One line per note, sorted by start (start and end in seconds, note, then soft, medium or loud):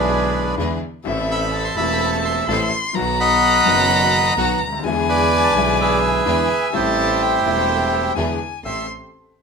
0.00 0.54 B1 medium
0.00 0.54 B1 loud
0.00 0.54 B2 medium
0.00 0.53 D3 medium
0.00 0.53 G#3 medium
0.00 0.54 B3 medium
0.00 0.55 D4 medium
0.00 0.55 E4 medium
0.00 0.55 G#4 medium
0.00 0.55 B4 medium
0.57 0.77 E2 medium
0.57 0.78 E2 medium
0.57 0.78 D3 medium
0.57 0.78 E3 medium
0.57 0.78 G#3 medium
0.57 0.78 B3 medium
0.57 0.78 D4 medium
0.57 0.78 E4 medium
0.57 0.78 G#4 medium
1.04 1.73 A1 medium
1.04 1.74 A2 medium
1.04 1.72 C3 medium
1.04 1.73 E3 medium
1.04 1.74 A3 medium
1.04 1.73 C4 medium
1.04 1.73 E4 medium
1.04 1.74 E4 medium
1.04 1.74 A4 medium
1.04 1.49 E5 medium
1.31 1.76 E5 medium
1.31 1.63 B5 medium
1.52 2.44 A5 medium
1.65 1.76 C6 medium
1.75 2.44 E1 loud
1.75 2.45 E1 medium
1.75 2.45 E2 medium
1.75 2.44 C3 medium
1.75 2.44 E3 medium
1.75 2.45 A3 medium
1.75 2.45 C4 medium
1.75 2.45 E4 medium
1.75 2.45 A4 medium
1.75 2.68 E5 medium
1.75 2.13 B5 medium
1.80 2.46 E4 medium
2.12 2.17 A5 medium
2.25 2.36 C6 medium
2.47 2.68 A1 medium
2.47 2.68 A2 medium
2.47 2.68 C3 medium
2.47 2.68 E3 medium
2.47 2.68 A3 medium
2.47 2.69 C4 medium
2.47 2.68 E4 medium
2.47 2.69 E4 medium
2.47 2.69 A4 medium
2.47 2.59 A5 medium
2.47 2.96 C6 loud
2.93 3.62 B1 medium
2.93 3.64 B1 medium
2.93 3.63 B2 medium
2.93 3.62 D#3 medium
2.93 3.62 F#3 medium
2.93 3.63 B3 medium
2.93 3.63 D#4 medium
2.93 3.63 F#4 medium
2.93 3.64 F#4 medium
2.93 4.85 A#5 loud
3.20 4.34 D#5 medium
3.20 4.34 F#5 medium
3.20 4.34 B5 loud
3.64 4.33 F#1 medium
3.64 4.34 F#1 loud
3.64 4.33 F#2 medium
3.64 4.32 D#3 medium
3.64 4.33 F#3 medium
3.64 4.34 B3 medium
3.64 4.34 D#4 medium
3.64 4.34 F#4 medium
4.37 4.57 B1 medium
4.37 4.57 B2 medium
4.37 4.57 D#3 medium
4.37 4.57 F#3 medium
4.37 4.57 B3 medium
4.37 4.57 D#4 medium
4.37 4.57 F#4 medium
4.37 4.60 F#5 medium
4.61 4.83 D2 medium
4.67 4.73 C#2 soft
4.72 4.78 D2 medium
4.78 4.84 D#2 medium
4.83 5.51 E2 medium
4.83 5.52 E2 medium
4.83 5.51 D3 medium
4.83 5.52 E3 medium
4.83 5.51 G#3 medium
4.83 5.52 B3 medium
4.83 5.52 D4 medium
4.83 5.52 E4 medium
4.83 5.53 E4 medium
4.83 5.52 G#4 medium
4.83 6.25 G#5 loud
5.09 5.80 B4 medium
5.09 5.99 D5 medium
5.09 5.45 G#5 loud
5.44 5.55 A5 loud
5.55 6.22 B1 loud
5.55 6.23 B1 medium
5.55 6.23 B2 medium
5.55 6.22 D3 medium
5.55 6.23 G#3 medium
5.55 6.23 B3 medium
5.55 6.22 D4 medium
5.55 6.23 E4 medium
5.55 6.24 E4 medium
5.55 6.23 G#4 medium
5.55 5.67 G#5 medium
5.81 6.71 G#4 medium
5.81 6.71 B4 medium
5.81 6.77 E5 medium
6.25 6.46 E2 medium
6.25 6.45 D3 medium
6.25 6.46 E3 medium
6.25 6.45 G#3 medium
6.25 6.46 B3 medium
6.25 6.45 D4 medium
6.25 6.45 E4 medium
6.25 6.46 E4 medium
6.25 6.46 G#4 medium
6.25 6.75 G#5 medium
6.70 7.40 A1 medium
6.70 7.41 A1 medium
6.70 7.40 A2 medium
6.70 7.39 C3 medium
6.70 7.40 G3 medium
6.70 7.41 A3 medium
6.70 7.41 C4 medium
6.70 7.41 G4 medium
6.70 7.41 A4 medium
6.70 7.23 A5 medium
6.75 7.41 E4 medium
6.75 8.13 E4 medium
6.75 8.13 G4 medium
6.75 8.13 C5 medium
7.22 8.17 G5 medium
7.43 8.12 E1 medium
7.43 8.13 E1 medium
7.43 8.13 E2 medium
7.43 8.12 C3 medium
7.43 8.13 G3 medium
7.43 8.13 A3 medium
7.43 8.12 C4 medium
7.43 8.12 G4 medium
7.43 8.12 A4 medium
7.48 8.14 E4 medium
8.15 8.36 E2 medium
8.15 8.37 E2 medium
8.15 8.36 D3 medium
8.15 8.37 E3 medium
8.15 8.36 G#3 medium
8.15 8.37 B3 medium
8.15 8.36 D4 medium
8.15 8.36 E4 medium
8.15 8.37 E4 medium
8.15 8.36 G#4 medium
8.15 8.63 G#5 medium
8.64 8.84 A1 medium
8.64 8.84 A1 soft
8.64 8.85 A3 soft
8.64 8.84 C4 soft
8.64 8.85 C4 soft
8.64 8.84 G4 soft
8.64 8.85 G4 medium
8.64 8.84 A4 medium
8.64 8.86 E5 medium
8.64 8.87 C6 medium